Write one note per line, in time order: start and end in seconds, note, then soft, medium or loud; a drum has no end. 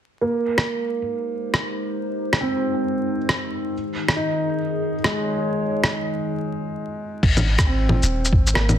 0.21 3.73 G#3 medium
0.21 0.98 A#3 medium
0.58 cross-stick medium
0.64 6.35 D#4 medium
0.82 3.73 G4 medium
0.82 3.72 C5 medium
1.54 cross-stick medium
2.33 cross-stick medium
2.41 3.17 C4 medium
3.29 cross-stick loud
3.72 6.35 D#3 medium
4.08 cross-stick medium
4.13 4.93 D#4 medium
4.13 6.36 G#4 medium
4.88 6.36 C#5 medium
5.04 5.81 G#3 medium
5.04 cross-stick loud
5.84 cross-stick medium
7.23 8.01 G#1 medium
7.23 kick loud
7.23 crash medium
7.37 low bongo soft
7.37 shaker soft
7.58 kick loud
7.58 cross-stick medium
7.58 shaker soft
7.67 8.43 C4 soft
7.89 low bongo medium
8.02 8.32 D#1 medium
8.02 shaker medium
8.25 shaker soft
8.32 8.79 G#1 medium
8.32 kick medium
8.47 shaker medium
8.54 8.79 A#3 medium
8.54 cross-stick loud
8.69 low bongo medium
8.69 shaker soft